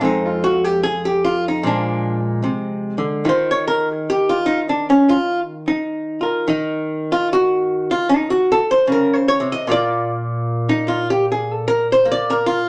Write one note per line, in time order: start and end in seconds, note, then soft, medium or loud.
0.01 1.63 F2 medium
0.01 1.60 G#3 soft
0.01 1.64 C4 soft
0.01 0.30 D#4 medium
0.26 0.54 F4 medium
0.44 0.64 F#4 medium
0.64 0.80 G4 medium
0.83 1.10 G#4 medium
1.05 1.34 G4 medium
1.25 1.44 F4 medium
1.48 1.62 D#4 medium
1.63 2.43 A#2 medium
1.63 3.23 F3 soft
1.63 3.25 G#3 soft
1.63 2.19 D4 medium
2.43 2.98 C3 medium
2.98 3.26 D3 medium
3.25 6.46 D#3 medium
3.25 4.46 D#4 soft
3.25 3.92 F4 soft
3.29 3.51 C5 medium
3.51 3.67 C#5 medium
3.68 3.87 A#4 medium
3.92 4.06 G#4 medium
4.10 4.36 G4 medium
4.29 4.59 F4 medium
4.46 4.67 D#4 medium
4.69 4.85 D4 medium
4.90 5.16 C#4 medium
5.09 5.39 F4 medium
5.68 6.46 D#4 medium
6.21 6.45 F4 soft
6.21 6.49 A#4 soft
6.48 9.67 D#3 medium
6.48 7.29 D#4 soft
6.48 7.12 D#5 soft
7.12 7.27 F4 medium
7.33 7.98 F#4 medium
7.91 8.07 F4 medium
8.09 8.30 D#4 medium
8.30 8.60 F#4 medium
8.52 8.70 A4 medium
8.71 8.86 C5 medium
8.87 9.40 C#3 medium
8.92 9.17 A#4 medium
9.13 9.28 C5 medium
9.28 9.48 C#5 medium
9.40 9.67 C3 medium
9.52 9.66 D#5 loud
9.67 12.69 A#2 medium
9.67 12.04 A#3 medium
9.67 10.69 F4 soft
9.71 10.22 D5 loud
10.69 10.98 D#4 medium
10.88 11.07 F4 medium
11.10 11.25 G4 medium
11.32 11.52 G#4 medium
11.52 11.67 A4 medium
11.68 11.87 A#4 medium
11.92 12.06 C5 medium
12.05 12.69 A#3 medium
12.12 12.36 D5 loud
12.30 12.58 A#4 medium
12.46 12.66 F4 medium